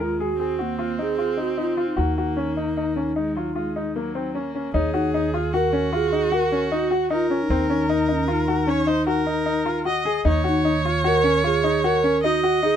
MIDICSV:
0, 0, Header, 1, 6, 480
1, 0, Start_track
1, 0, Tempo, 394737
1, 2400, Time_signature, 7, 2, 24, 8
1, 15521, End_track
2, 0, Start_track
2, 0, Title_t, "Celesta"
2, 0, Program_c, 0, 8
2, 5768, Note_on_c, 0, 73, 40
2, 6456, Note_off_c, 0, 73, 0
2, 15395, Note_on_c, 0, 68, 63
2, 15521, Note_off_c, 0, 68, 0
2, 15521, End_track
3, 0, Start_track
3, 0, Title_t, "Ocarina"
3, 0, Program_c, 1, 79
3, 25, Note_on_c, 1, 65, 72
3, 261, Note_on_c, 1, 66, 73
3, 280, Note_off_c, 1, 65, 0
3, 748, Note_on_c, 1, 58, 73
3, 766, Note_off_c, 1, 66, 0
3, 1239, Note_on_c, 1, 68, 76
3, 1257, Note_off_c, 1, 58, 0
3, 1699, Note_off_c, 1, 68, 0
3, 1718, Note_on_c, 1, 66, 74
3, 1923, Note_off_c, 1, 66, 0
3, 1961, Note_on_c, 1, 65, 61
3, 2218, Note_off_c, 1, 65, 0
3, 2218, Note_on_c, 1, 65, 58
3, 2275, Note_on_c, 1, 63, 63
3, 2288, Note_off_c, 1, 65, 0
3, 5314, Note_off_c, 1, 63, 0
3, 6008, Note_on_c, 1, 63, 76
3, 6453, Note_off_c, 1, 63, 0
3, 6751, Note_on_c, 1, 70, 90
3, 7185, Note_off_c, 1, 70, 0
3, 7231, Note_on_c, 1, 68, 77
3, 7716, Note_on_c, 1, 70, 90
3, 7734, Note_off_c, 1, 68, 0
3, 8179, Note_off_c, 1, 70, 0
3, 8186, Note_on_c, 1, 66, 69
3, 8621, Note_off_c, 1, 66, 0
3, 8680, Note_on_c, 1, 65, 76
3, 9029, Note_on_c, 1, 63, 77
3, 9047, Note_off_c, 1, 65, 0
3, 9874, Note_on_c, 1, 61, 72
3, 9893, Note_off_c, 1, 63, 0
3, 10098, Note_off_c, 1, 61, 0
3, 10111, Note_on_c, 1, 63, 79
3, 11965, Note_off_c, 1, 63, 0
3, 12743, Note_on_c, 1, 63, 83
3, 13177, Note_off_c, 1, 63, 0
3, 13457, Note_on_c, 1, 70, 89
3, 13894, Note_off_c, 1, 70, 0
3, 13936, Note_on_c, 1, 68, 87
3, 14418, Note_on_c, 1, 70, 88
3, 14436, Note_off_c, 1, 68, 0
3, 14899, Note_on_c, 1, 66, 76
3, 14917, Note_off_c, 1, 70, 0
3, 15361, Note_off_c, 1, 66, 0
3, 15368, Note_on_c, 1, 68, 87
3, 15521, Note_off_c, 1, 68, 0
3, 15521, End_track
4, 0, Start_track
4, 0, Title_t, "Viola"
4, 0, Program_c, 2, 41
4, 0, Note_on_c, 2, 56, 64
4, 467, Note_off_c, 2, 56, 0
4, 474, Note_on_c, 2, 60, 67
4, 2413, Note_on_c, 2, 58, 60
4, 2431, Note_off_c, 2, 60, 0
4, 3846, Note_off_c, 2, 58, 0
4, 3853, Note_on_c, 2, 56, 61
4, 4082, Note_on_c, 2, 54, 57
4, 4100, Note_off_c, 2, 56, 0
4, 4320, Note_off_c, 2, 54, 0
4, 4327, Note_on_c, 2, 56, 60
4, 4803, Note_on_c, 2, 54, 54
4, 4821, Note_off_c, 2, 56, 0
4, 5283, Note_on_c, 2, 58, 52
4, 5301, Note_off_c, 2, 54, 0
4, 5757, Note_off_c, 2, 58, 0
4, 5764, Note_on_c, 2, 68, 78
4, 6736, Note_on_c, 2, 66, 76
4, 6754, Note_off_c, 2, 68, 0
4, 8648, Note_off_c, 2, 66, 0
4, 8657, Note_on_c, 2, 70, 81
4, 10566, Note_on_c, 2, 73, 88
4, 10584, Note_off_c, 2, 70, 0
4, 10795, Note_on_c, 2, 72, 87
4, 10814, Note_off_c, 2, 73, 0
4, 11020, Note_off_c, 2, 72, 0
4, 11027, Note_on_c, 2, 70, 86
4, 11944, Note_off_c, 2, 70, 0
4, 12005, Note_on_c, 2, 75, 80
4, 12448, Note_off_c, 2, 75, 0
4, 12497, Note_on_c, 2, 73, 101
4, 14837, Note_off_c, 2, 73, 0
4, 14874, Note_on_c, 2, 75, 94
4, 15521, Note_off_c, 2, 75, 0
4, 15521, End_track
5, 0, Start_track
5, 0, Title_t, "Grand piano"
5, 0, Program_c, 3, 0
5, 0, Note_on_c, 3, 70, 56
5, 173, Note_off_c, 3, 70, 0
5, 246, Note_on_c, 3, 68, 57
5, 417, Note_off_c, 3, 68, 0
5, 482, Note_on_c, 3, 68, 56
5, 655, Note_off_c, 3, 68, 0
5, 716, Note_on_c, 3, 66, 53
5, 891, Note_off_c, 3, 66, 0
5, 955, Note_on_c, 3, 65, 61
5, 1131, Note_off_c, 3, 65, 0
5, 1200, Note_on_c, 3, 63, 54
5, 1374, Note_off_c, 3, 63, 0
5, 1437, Note_on_c, 3, 65, 54
5, 1613, Note_off_c, 3, 65, 0
5, 1668, Note_on_c, 3, 63, 51
5, 1847, Note_off_c, 3, 63, 0
5, 1914, Note_on_c, 3, 63, 57
5, 2092, Note_off_c, 3, 63, 0
5, 2156, Note_on_c, 3, 65, 54
5, 2333, Note_off_c, 3, 65, 0
5, 2389, Note_on_c, 3, 66, 66
5, 2569, Note_off_c, 3, 66, 0
5, 2649, Note_on_c, 3, 66, 59
5, 2821, Note_off_c, 3, 66, 0
5, 2876, Note_on_c, 3, 61, 63
5, 3053, Note_off_c, 3, 61, 0
5, 3124, Note_on_c, 3, 63, 52
5, 3299, Note_off_c, 3, 63, 0
5, 3370, Note_on_c, 3, 63, 57
5, 3543, Note_off_c, 3, 63, 0
5, 3600, Note_on_c, 3, 61, 57
5, 3777, Note_off_c, 3, 61, 0
5, 3842, Note_on_c, 3, 63, 52
5, 4018, Note_off_c, 3, 63, 0
5, 4093, Note_on_c, 3, 65, 49
5, 4265, Note_off_c, 3, 65, 0
5, 4322, Note_on_c, 3, 65, 56
5, 4498, Note_off_c, 3, 65, 0
5, 4572, Note_on_c, 3, 63, 53
5, 4744, Note_off_c, 3, 63, 0
5, 4812, Note_on_c, 3, 58, 56
5, 4985, Note_off_c, 3, 58, 0
5, 5047, Note_on_c, 3, 60, 57
5, 5222, Note_off_c, 3, 60, 0
5, 5284, Note_on_c, 3, 61, 56
5, 5459, Note_off_c, 3, 61, 0
5, 5530, Note_on_c, 3, 61, 55
5, 5704, Note_off_c, 3, 61, 0
5, 5765, Note_on_c, 3, 63, 76
5, 5940, Note_off_c, 3, 63, 0
5, 6003, Note_on_c, 3, 66, 68
5, 6179, Note_off_c, 3, 66, 0
5, 6253, Note_on_c, 3, 63, 68
5, 6425, Note_off_c, 3, 63, 0
5, 6490, Note_on_c, 3, 65, 64
5, 6663, Note_off_c, 3, 65, 0
5, 6733, Note_on_c, 3, 66, 69
5, 6905, Note_off_c, 3, 66, 0
5, 6963, Note_on_c, 3, 61, 66
5, 7139, Note_off_c, 3, 61, 0
5, 7206, Note_on_c, 3, 65, 67
5, 7380, Note_off_c, 3, 65, 0
5, 7446, Note_on_c, 3, 63, 60
5, 7620, Note_off_c, 3, 63, 0
5, 7683, Note_on_c, 3, 66, 74
5, 7858, Note_off_c, 3, 66, 0
5, 7928, Note_on_c, 3, 61, 62
5, 8101, Note_off_c, 3, 61, 0
5, 8167, Note_on_c, 3, 63, 66
5, 8340, Note_off_c, 3, 63, 0
5, 8399, Note_on_c, 3, 66, 65
5, 8575, Note_off_c, 3, 66, 0
5, 8638, Note_on_c, 3, 63, 67
5, 8814, Note_off_c, 3, 63, 0
5, 8878, Note_on_c, 3, 61, 61
5, 9055, Note_off_c, 3, 61, 0
5, 9125, Note_on_c, 3, 60, 77
5, 9299, Note_off_c, 3, 60, 0
5, 9359, Note_on_c, 3, 61, 70
5, 9535, Note_off_c, 3, 61, 0
5, 9599, Note_on_c, 3, 63, 70
5, 9775, Note_off_c, 3, 63, 0
5, 9830, Note_on_c, 3, 63, 62
5, 10009, Note_off_c, 3, 63, 0
5, 10065, Note_on_c, 3, 65, 64
5, 10245, Note_off_c, 3, 65, 0
5, 10310, Note_on_c, 3, 66, 67
5, 10489, Note_off_c, 3, 66, 0
5, 10543, Note_on_c, 3, 61, 72
5, 10724, Note_off_c, 3, 61, 0
5, 10784, Note_on_c, 3, 63, 64
5, 10965, Note_off_c, 3, 63, 0
5, 11024, Note_on_c, 3, 66, 72
5, 11205, Note_off_c, 3, 66, 0
5, 11266, Note_on_c, 3, 63, 61
5, 11445, Note_off_c, 3, 63, 0
5, 11501, Note_on_c, 3, 63, 68
5, 11682, Note_off_c, 3, 63, 0
5, 11740, Note_on_c, 3, 65, 60
5, 11921, Note_off_c, 3, 65, 0
5, 11980, Note_on_c, 3, 66, 67
5, 12162, Note_off_c, 3, 66, 0
5, 12223, Note_on_c, 3, 68, 72
5, 12404, Note_off_c, 3, 68, 0
5, 12460, Note_on_c, 3, 63, 81
5, 12642, Note_off_c, 3, 63, 0
5, 12695, Note_on_c, 3, 66, 65
5, 12878, Note_off_c, 3, 66, 0
5, 12947, Note_on_c, 3, 63, 70
5, 13126, Note_off_c, 3, 63, 0
5, 13196, Note_on_c, 3, 65, 63
5, 13371, Note_off_c, 3, 65, 0
5, 13426, Note_on_c, 3, 66, 75
5, 13605, Note_off_c, 3, 66, 0
5, 13665, Note_on_c, 3, 61, 70
5, 13844, Note_off_c, 3, 61, 0
5, 13909, Note_on_c, 3, 65, 69
5, 14087, Note_off_c, 3, 65, 0
5, 14151, Note_on_c, 3, 63, 66
5, 14328, Note_off_c, 3, 63, 0
5, 14398, Note_on_c, 3, 66, 79
5, 14573, Note_off_c, 3, 66, 0
5, 14637, Note_on_c, 3, 61, 66
5, 14811, Note_off_c, 3, 61, 0
5, 14884, Note_on_c, 3, 63, 75
5, 15056, Note_off_c, 3, 63, 0
5, 15120, Note_on_c, 3, 66, 73
5, 15294, Note_off_c, 3, 66, 0
5, 15355, Note_on_c, 3, 63, 69
5, 15521, Note_off_c, 3, 63, 0
5, 15521, End_track
6, 0, Start_track
6, 0, Title_t, "Upright bass"
6, 0, Program_c, 4, 32
6, 0, Note_on_c, 4, 39, 59
6, 2359, Note_off_c, 4, 39, 0
6, 2404, Note_on_c, 4, 39, 54
6, 5719, Note_off_c, 4, 39, 0
6, 5764, Note_on_c, 4, 39, 65
6, 9073, Note_off_c, 4, 39, 0
6, 9115, Note_on_c, 4, 39, 66
6, 12426, Note_off_c, 4, 39, 0
6, 12462, Note_on_c, 4, 39, 72
6, 15521, Note_off_c, 4, 39, 0
6, 15521, End_track
0, 0, End_of_file